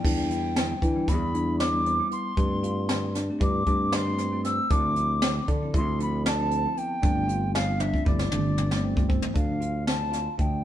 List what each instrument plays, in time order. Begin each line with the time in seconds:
Already playing: flute G5
0.03 fingered electric bass E2, tine electric piano G3 B3 D4, kick, crash
0.31 tine electric piano E4, closed hi-hat
0.56 snare, closed hi-hat
0.82 fingered electric bass E3, tine electric piano D4, kick, closed hi-hat
0.94 tine electric piano G3 B3 E4
1.08 fingered electric bass E2, tine electric piano E4, flute B5, kick, snare, closed hi-hat
1.34 tine electric piano G3 B3 D4, closed hi-hat
1.59 flute D6, snare, closed hi-hat
1.72 tine electric piano G3 B3 D4
1.85 tine electric piano C4, closed hi-hat
1.98 tine electric piano G3 B3 E4
2.11 tine electric piano B3, flute C6, closed hi-hat
2.37 fingered electric bass G2, tine electric piano A3 C4 D4 F4, kick, closed hi-hat
2.63 tine electric piano F4, closed hi-hat
2.89 snare, closed hi-hat
3.15 tine electric piano D4, snare, closed hi-hat
3.29 tine electric piano A3 C4 G4
3.40 fingered electric bass G2, tine electric piano E4, flute D6, kick, closed hi-hat
3.67 fingered electric bass G2, tine electric piano A3 C4 D4 F4, kick, closed hi-hat
3.92 flute C6, snare, closed hi-hat
4.06 tine electric piano A3 C4 F4
4.18 tine electric piano C4, snare, closed hi-hat
4.32 tine electric piano A3 C4 F4
4.45 tine electric piano C4, flute E6, snare, closed hi-hat
4.70 fingered electric bass D2, tine electric piano F3 C4 D4 E4, flute D6, kick, closed hi-hat
4.96 tine electric piano E4, closed hi-hat
5.22 snare, closed hi-hat
5.48 fingered electric bass D3, tine electric piano D4, kick, closed hi-hat
5.61 tine electric piano F3 C4 E4
5.74 fingered electric bass D2, tine electric piano E4, flute C6, kick, closed hi-hat
5.99 tine electric piano F3 C4 D4 E4, flute B5, closed hi-hat
6.26 flute A5, snare, closed hi-hat
6.39 tine electric piano F3 C4 E4
6.51 tine electric piano C4, closed hi-hat
6.64 tine electric piano F3 C4 E4
6.76 tine electric piano B3, flute G5, closed hi-hat
7.02 fingered electric bass G1, tine electric piano A3 C4 D4 F4, kick, closed hi-hat
7.28 tine electric piano F4, closed hi-hat
7.55 flute F5, snare, closed hi-hat
7.80 tine electric piano D4, flute E5, high tom
7.93 tine electric piano A3 C4 F4, kick
8.05 fingered electric bass G1, tine electric piano E4, flute D5, kick
8.19 snare
8.31 fingered electric bass G1, tine electric piano A3 C4 D4 F4, mid tom
8.58 mid tom
8.71 tine electric piano A3 C4 D4, snare
8.83 tine electric piano C4 G5
8.95 tine electric piano A3 C4 F4, kick
9.09 tine electric piano C4 C5, kick
9.22 floor tom
9.34 fingered electric bass D2, tine electric piano D4, flute F5, kick, closed hi-hat
9.60 tine electric piano F4, closed hi-hat
9.87 flute A5, snare, closed hi-hat
10.12 tine electric piano F4, snare, closed hi-hat
10.38 fingered electric bass D2, tine electric piano D4, flute G5, kick, closed hi-hat